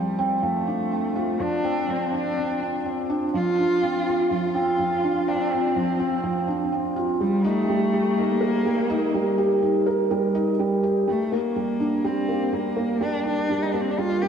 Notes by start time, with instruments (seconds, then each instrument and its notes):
Already playing: felt piano F3 C4 F4, cello G3
0.19 felt piano C4
0.43 felt piano F3, cello A3
0.67 felt piano D4
0.92 felt piano C4
1.16 felt piano F4
1.40 felt piano F3, cello D4
1.64 felt piano C4
1.88 felt piano F3, cello C4
2.13 felt piano D4, cello D4
2.38 felt piano C4
2.62 felt piano C4
2.86 felt piano C4
3.10 felt piano D4
3.34 felt piano F3, cello F4
3.58 felt piano D4
3.82 felt piano C4
4.07 felt piano F4
4.31 felt piano F3, cello F4
4.55 felt piano C4
4.79 felt piano F3
5.03 felt piano D4
5.28 felt piano C4, cello D4
5.51 cello C4, felt piano F4
5.76 felt piano F3
6.00 felt piano C4
6.23 felt piano F3
6.48 felt piano D4
6.72 felt piano C4
6.96 felt piano F4
7.20 felt piano G3, cello G3
7.44 cello A3, felt piano D#4
7.69 felt piano G3
7.93 felt piano G4
8.18 cello A#3, felt piano D#4
8.41 felt piano A#4
8.65 felt piano G3
8.90 felt piano D#4
9.14 felt piano G3
9.38 felt piano G4
9.62 felt piano D#4
9.86 felt piano A#4
10.11 felt piano G3
10.35 felt piano D#4
10.59 felt piano G3
10.83 felt piano G4
11.08 felt piano G3, cello A3
11.32 felt piano A#3, cello A#3
11.56 felt piano G3
11.80 felt piano D4
12.04 felt piano G3, cello C4
12.29 felt piano A#3
12.53 felt piano G3, cello A#3
12.77 felt piano A#3
13.01 felt piano G3, cello D4
13.25 felt piano D4, cello D4
13.50 felt piano G3
13.62 cello D#4
13.72 felt piano A#3, cello D4
13.81 cello C4
13.91 cello D4
13.98 felt piano G3, cello F4
14.22 felt piano A#3, cello G4